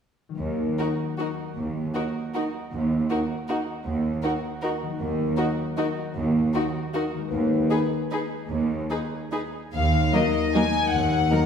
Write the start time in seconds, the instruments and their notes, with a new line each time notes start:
0.29 harp D#3 F#3 D#4
0.35 harp A#4
0.39 cello section D#2
0.79 viola section D#4, violin section F#4 A#4
1.18 viola section D#4, violin section F#4 A#4
1.57 cello section D#2
1.94 viola section D#4, violin section F#4 A#4
2.34 viola section D#4, violin section F#4 A#4
2.72 cello section D#2
3.10 viola section D#4, violin section F#4 A#4
3.48 viola section D#4, violin section F#4 A#4
3.86 cello section D#2
4.23 viola section D#4, violin section F#4 A#4
4.62 viola section D#4, violin section F#4 A#4
4.82 harp D#3
4.87 harp F#3
4.91 harp D#4
4.96 harp A#4
5.00 cello section D#2
5.37 viola section D#4, violin section F#4 A#4
5.77 viola section D#4, violin section F#4 A#4
6.16 cello section D#2
6.54 viola section D#4, violin section F#4 A#4
6.94 viola section D#4, violin section F#4 A#4
7.14 harp D#3
7.18 harp G#3
7.23 harp D#4
7.27 harp B4
7.32 cello section D#2
7.70 viola section D#4, violin section G#4 B4
8.11 viola section D#4, violin section G#4 B4
8.50 cello section D#2
8.90 viola section D#4, violin section G#4 B4
9.32 viola section D#4, violin section G#4 B4
9.74 double bass section D#2, cello section D#2, harp D#3, violin section F5
9.94 harp D#4
10.13 viola section F#3 A#3, violin section D#4 A#4 D#5, harp A#4
10.35 harp D#4
10.54 viola section F#3 A#3, violin section D#4 A#4 G#5
10.74 harp D#4
10.92 double bass section D#2, cello section D#2, harp D#3, violin section F#5
11.12 harp A#3
11.31 viola section F#3 A#3, violin section D#4 A#4, harp A#4